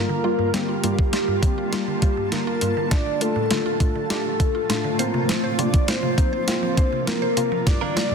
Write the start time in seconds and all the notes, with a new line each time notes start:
Already playing: D3 G3 A#3 F4 A#4
0.09 D3
0.24 G3 A#3 F4
0.39 G2
0.54 D3 G3 A#3 C4 G4 A5, snare, closed hi-hat
0.68 F4
0.83 G2 G3 A#3 F4, closed hi-hat
0.98 D3, kick
1.13 G3 A#3 F4 G4, snare, closed hi-hat
1.28 G2
1.43 D3 G3 A#3 C4, kick, closed hi-hat
1.58 F4
1.72 G3 A#3 F4, snare, closed hi-hat
1.88 D3
2.02 G3 A#3 F4, kick, closed hi-hat
2.17 G2
2.32 D3 G3 A#3 F4 A#4, snare, closed hi-hat
2.47 F4
2.61 G2 G3 A#3 F4, closed hi-hat
2.77 D3
2.91 A2 F3 A3 D4 F4 D5, kick, snare, closed hi-hat
3.06 D3
3.21 A3 D4 F4 A4, closed hi-hat
3.36 A2
3.50 D3 A3 D4 F4, snare, closed hi-hat
3.66 F4
3.80 A2 A3 D4 F4 A4, kick, closed hi-hat
3.96 D3
4.10 A3 D4 F4 G4, snare, closed hi-hat
4.40 D3 A3 D4 F4, kick, closed hi-hat
4.55 F4
4.69 A2 A3 D4 F4, snare, closed hi-hat
4.84 D3
4.99 C3 A#3 C4 F4 A#4 C5, closed hi-hat
5.14 C3
5.29 F3 C5, snare, closed hi-hat
5.44 C5
5.58 C3 A#3 C4 F4 D5, closed hi-hat
5.73 F3, kick, closed hi-hat
5.88 A#3 C4 F4 C5, snare, closed hi-hat
6.03 C3
6.18 F3 A#3 C4 D#4, kick, closed hi-hat
6.33 C5
6.48 A#3 C4 F4 C5, snare, closed hi-hat
6.63 F3
6.77 A#3 C4 D4 C5, kick, closed hi-hat
6.92 C3
7.07 F3 A#3 C4 F4 A#4, snare, closed hi-hat
7.22 C5
7.37 C3 A#3 C4 F4, closed hi-hat
7.52 F3
7.66 G2 G3 A#3 F4 D5, muted clean electric guitar stroke, kick, snare, closed hi-hat, riser
7.81 D3 A#3 D4 F4 A#4
7.96 G3 A#3 D4 F4 A#4 D5, snare, closed hi-hat
8.11 G2